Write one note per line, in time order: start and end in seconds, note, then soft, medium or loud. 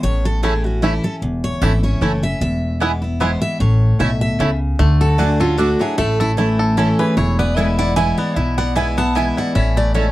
0.03 0.97 A1 medium
0.03 0.79 A2 medium
0.03 0.24 C#5 loud
0.25 0.43 A4 medium
0.43 0.64 E3 soft
0.43 0.53 A3 medium
0.43 0.64 A3 medium
0.43 0.64 C#4 medium
0.43 0.53 C#4 medium
0.43 0.53 E4 medium
0.43 0.63 E4 medium
0.43 0.65 G#4 medium
0.43 0.53 C#5 medium
0.43 0.53 A5 loud
0.64 0.82 C#4 medium
0.64 0.82 E4 medium
0.64 0.82 F#4 medium
0.82 1.03 E3 medium
0.82 0.92 A3 medium
0.82 1.03 A3 medium
0.82 0.92 A3 medium
0.82 1.04 C#4 medium
0.82 0.93 C#4 medium
0.82 1.03 E4 medium
0.82 0.93 E4 medium
0.82 1.02 E4 medium
0.82 0.93 C#5 medium
0.82 0.93 A5 medium
1.03 1.22 C#4 soft
1.03 1.21 E4 medium
1.03 1.15 A4 medium
1.22 1.53 E1 medium
1.22 1.98 E2 medium
1.44 1.62 C#5 medium
1.61 1.95 G#1 medium
1.61 1.82 E3 medium
1.61 1.71 A3 medium
1.61 1.83 A3 medium
1.61 1.72 A3 medium
1.61 1.72 C#4 medium
1.61 1.83 C#4 medium
1.61 1.72 E4 medium
1.61 1.82 E4 medium
1.61 1.72 C#5 medium
1.61 1.83 E5 medium
1.61 1.72 A5 medium
1.83 2.02 C#4 medium
1.83 2.01 E4 medium
1.83 2.20 C#5 medium
2.01 2.35 F#1 medium
2.01 2.22 E3 medium
2.01 2.11 A3 medium
2.01 2.22 A3 medium
2.01 2.11 C#4 medium
2.01 2.23 C#4 medium
2.01 2.11 E4 medium
2.01 2.21 E4 medium
2.01 2.12 C#5 medium
2.01 2.12 A5 medium
2.23 2.41 C#4 soft
2.23 2.40 E4 medium
2.23 2.40 E5 medium
2.41 3.34 E1 medium
2.41 3.17 E2 medium
2.41 2.78 E5 medium
2.80 3.01 E3 medium
2.80 3.02 G#3 medium
2.80 2.90 B3 medium
2.80 2.91 B3 medium
2.80 3.02 B3 medium
2.80 2.91 E4 medium
2.80 3.00 E4 medium
2.80 2.91 B4 loud
2.80 2.91 G#5 loud
3.02 3.20 B3 medium
3.02 3.19 E4 medium
3.20 3.58 E3 medium
3.20 3.58 G#3 medium
3.20 3.30 B3 medium
3.20 3.59 B3 medium
3.20 3.30 E4 medium
3.20 3.59 E4 medium
3.20 3.31 B4 medium
3.20 3.41 C5 medium
3.20 3.31 G#5 medium
3.42 3.59 E5 loud
3.60 3.91 A1 medium
3.60 4.36 A2 medium
3.60 3.97 C#5 medium
3.99 4.33 B1 medium
3.99 4.38 B2 medium
3.99 4.09 A3 medium
3.99 4.10 C#4 medium
3.99 4.10 E4 medium
3.99 4.10 C#5 medium
3.99 4.20 E5 medium
3.99 4.10 A5 medium
4.21 4.58 E5 medium
4.39 4.73 C#2 medium
4.39 4.77 C#3 medium
4.39 4.49 A3 medium
4.39 4.49 C#4 medium
4.39 4.49 E4 medium
4.39 4.50 E4 medium
4.39 4.49 C#5 medium
4.39 4.50 A5 medium
4.79 5.73 D2 medium
4.79 5.17 D3 medium
4.79 5.36 A3 medium
5.01 5.17 F#4 medium
5.01 5.39 A4 medium
5.01 5.19 A4 medium
5.18 5.39 D3 medium
5.18 5.28 A3 medium
5.18 5.40 A3 medium
5.18 5.41 D4 medium
5.18 5.40 D4 medium
5.18 5.76 F#4 medium
5.18 5.29 F#4 loud
5.18 5.38 F#4 medium
5.18 5.40 G#4 medium
5.18 5.29 D5 medium
5.18 5.29 A5 loud
5.40 5.57 C#4 medium
5.40 5.58 D4 soft
5.40 5.58 F4 medium
5.40 5.57 F#4 medium
5.40 5.94 A4 medium
5.58 5.79 D3 medium
5.58 5.68 A3 medium
5.58 5.79 A3 medium
5.58 5.98 D4 medium
5.58 5.79 D4 medium
5.58 5.68 F#4 medium
5.58 5.80 F#4 medium
5.58 5.78 F#4 medium
5.58 5.69 D5 medium
5.58 5.69 A5 loud
5.79 5.98 F#3 medium
5.79 5.98 D4 soft
5.79 5.97 E4 medium
5.79 5.97 F#4 medium
5.79 5.97 G#4 medium
5.98 6.92 A1 medium
5.98 6.74 A2 medium
5.98 6.55 A3 medium
5.98 6.18 E4 medium
5.98 6.19 A4 loud
6.20 6.36 C#4 medium
6.20 6.31 E4 medium
6.20 6.58 A4 medium
6.37 6.75 E3 medium
6.37 6.47 A3 medium
6.37 6.76 A3 medium
6.37 6.76 C#4 medium
6.37 6.48 E4 medium
6.37 7.17 E4 medium
6.37 6.76 E4 medium
6.37 6.48 C#5 medium
6.37 6.48 A5 loud
6.59 7.13 A4 medium
6.77 7.15 E3 medium
6.77 6.87 A3 medium
6.77 7.15 A3 medium
6.77 7.17 C#4 medium
6.77 7.16 C#4 medium
6.77 6.87 E4 medium
6.77 6.98 E4 medium
6.77 7.16 E4 medium
6.77 6.99 A4 medium
6.77 6.87 C#5 medium
6.77 6.88 A5 loud
6.99 8.39 E3 medium
6.99 7.16 G#4 medium
6.99 7.16 B4 medium
7.17 8.11 E1 loud
7.17 7.93 E2 medium
7.17 7.56 E4 medium
7.17 7.37 G#4 medium
7.17 7.38 C#5 medium
7.39 7.93 B3 medium
7.39 7.56 B4 medium
7.39 7.57 D5 medium
7.56 7.95 E3 medium
7.56 7.95 G#3 medium
7.56 7.66 B3 medium
7.56 7.95 B3 medium
7.56 7.67 E4 medium
7.56 7.79 E4 medium
7.56 7.96 E4 medium
7.56 7.67 B4 loud
7.56 7.78 B4 medium
7.56 7.78 E5 medium
7.56 7.67 G#5 loud
7.78 7.96 E4 medium
7.78 7.95 D5 loud
7.78 7.96 F#5 loud
7.96 8.34 E3 medium
7.96 8.34 G#3 medium
7.96 8.06 B3 medium
7.96 8.35 B3 loud
7.96 8.36 E4 medium
7.96 8.06 E4 medium
7.96 8.35 E4 loud
7.96 8.07 B4 medium
7.96 8.17 E5 medium
7.96 8.17 G#5 loud
7.96 8.07 G#5 loud
8.17 8.57 B3 medium
8.17 8.36 D5 medium
8.17 8.36 F#5 medium
8.36 9.30 B1 medium
8.36 9.12 B2 medium
8.36 8.76 E4 medium
8.36 8.58 B4 medium
8.36 8.57 E5 medium
8.57 8.96 B3 medium
8.57 8.74 D5 medium
8.57 8.75 F#5 loud
8.75 8.96 E3 medium
8.75 8.97 G#3 medium
8.75 8.85 B3 medium
8.75 8.97 B3 medium
8.75 8.86 E4 medium
8.75 9.16 E4 medium
8.75 8.96 E4 loud
8.75 8.86 B4 loud
8.75 8.96 E5 medium
8.75 8.97 G#5 medium
8.75 8.86 G#5 medium
8.97 9.52 B3 medium
8.97 9.15 B3 soft
8.97 9.15 E4 medium
8.97 9.14 F#5 loud
8.97 9.16 A5 loud
9.15 9.53 E3 medium
9.15 9.54 G#3 medium
9.15 9.25 B3 medium
9.15 9.54 B3 medium
9.15 9.25 E4 medium
9.15 9.37 E4 medium
9.15 9.54 E4 loud
9.15 9.26 B4 medium
9.15 9.37 E5 medium
9.15 9.37 G#5 loud
9.15 9.26 G#5 loud
9.37 10.12 E4 medium
9.37 9.54 D5 medium
9.37 9.55 F#5 medium
9.55 10.12 A1 medium
9.55 10.12 A2 medium
9.55 9.94 C#4 medium
9.55 9.75 C#5 medium
9.55 9.76 E5 medium
9.76 10.12 A3 medium
9.76 9.93 B4 medium
9.76 9.94 D5 medium
9.94 10.12 G#3 medium
9.94 10.05 A3 medium
9.94 10.12 C#4 medium
9.94 10.05 E4 medium
9.94 10.12 A4 medium
9.94 10.12 C#5 medium
9.94 10.05 C#5 medium
9.94 10.05 A5 medium